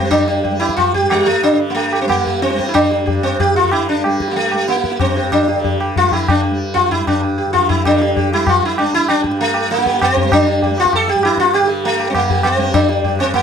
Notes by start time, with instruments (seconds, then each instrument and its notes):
Already playing: tanpura G2 D3, sitar C4
0.00 tanpura G3
0.11 sitar D4, tabla na, tabla ge
0.28 sitar G4, tabla te
0.44 sitar G4, tabla tin, tabla ge
0.51 tanpura G3
0.60 sitar E4, tabla na
0.69 tabla ke
0.76 sitar F4, tabla na, tabla ge
0.94 sitar G4, tabla ge
1.01 tanpura G2
1.10 sitar G3, tabla na
1.26 sitar A3, tabla te
1.43 sitar D4, tabla na
1.52 tanpura D3
1.60 tabla te
1.70 sitar A#3
1.75 sitar A3, tabla tin
1.91 sitar G4, tabla na
2.01 tanpura G3, sitar C4
2.08 sitar A#3, tabla na, tabla ge
2.24 sitar G4, tabla ge
2.42 sitar C4, tabla te
2.50 tanpura G3, tabla te
2.58 sitar G4, tabla ke
2.67 sitar E4, tabla te
2.74 sitar D4, tabla na, tabla ge
2.90 sitar G4, tabla te
3.04 tanpura G2, sitar G4, tabla tin, tabla ge
3.23 sitar C4, tabla na
3.40 sitar G4, tabla na, tabla ge
3.55 tanpura D3, sitar F4, tabla te
3.64 sitar F4, tabla ge
3.72 sitar E4, tabla na
3.88 sitar D4, tabla te
4.04 tanpura G3, sitar G4, tabla na
4.20 sitar G4, tabla ke
4.28 sitar A#3, tabla te
4.36 sitar A3, tabla tin
4.52 tanpura G3, sitar G4, tabla na
4.68 sitar A#3, tabla te
4.76 tabla te
4.84 tabla ke
4.92 tabla te
5.00 tanpura G2, sitar C4, tabla na, tabla ge
5.16 sitar G4, tabla te
5.32 sitar D4, tabla na, tabla ge
5.48 sitar G4, tabla te
5.52 tanpura D3
5.64 sitar G4, tabla tin, tabla ge
5.80 sitar G4, tabla na
5.96 sitar F4, tabla tin, tabla ge
6.01 tanpura G3
6.12 sitar E4, tabla tin, tabla ge
6.28 sitar D4, tabla na, tabla ge
6.43 sitar G4
6.50 tanpura G3
6.74 sitar F4, tabla tin, tabla ge
6.91 sitar E4, tabla tin, tabla ge
6.99 tanpura G2
7.07 sitar D4, tabla na, tabla ge
7.23 sitar G4
7.38 sitar G4
7.47 tanpura D3
7.53 sitar F4, tabla tin, tabla ge
7.69 sitar E4, tabla tin, tabla ge
7.85 tanpura D3, sitar D4 G4, tabla na, tabla ge
8.02 sitar G4, tabla te
8.17 sitar G4, tabla tin, tabla ge
8.33 tanpura G3, sitar E4, tabla na
8.47 sitar F4, tabla na, tabla ge
8.63 sitar E4, tabla ge
8.78 tanpura G3, sitar D4, tabla na
8.94 sitar E4, tabla te
9.09 sitar D4, tabla na
9.24 tanpura G2, sitar G4, tabla ke
9.31 tabla te
9.39 sitar A3, tabla tin
9.54 tabla na
9.70 sitar A#3, tabla te
9.75 tanpura D3, tabla te
9.86 sitar G4, tabla ke
9.94 tabla te
10.02 sitar C4, tabla na, tabla ge
10.17 sitar G4, tabla ge
10.23 tanpura G3
10.32 sitar D4, tabla na, tabla ge
10.47 sitar G4, tabla te
10.62 sitar G4, tabla tin, tabla ge
10.70 tanpura G3
10.78 sitar F4, tabla na
10.85 tabla ke
10.93 sitar A4, tabla na, tabla ge
11.08 sitar G4, tabla te
11.15 tanpura G2, tabla ge
11.23 sitar E4, tabla na
11.38 sitar F4, tabla ke
11.45 tabla te
11.54 sitar G4, tabla na
11.62 tanpura D3
11.69 sitar G4, tabla te
11.84 sitar A3, tabla tin
12.00 sitar G4, tabla na
12.10 tanpura G3, sitar C4
12.15 sitar A#3, tabla na, tabla ge
12.30 sitar G4, tabla ge
12.43 sitar C4, tabla na, tabla ge
12.57 tanpura G3, sitar G4, tabla ge
12.74 sitar D4, tabla na, tabla ge
12.89 sitar G4, tabla te
13.03 tanpura G2, sitar G4, tabla tin, tabla ge
13.19 sitar C4, tabla na
13.34 sitar A#3, tabla na, tabla ge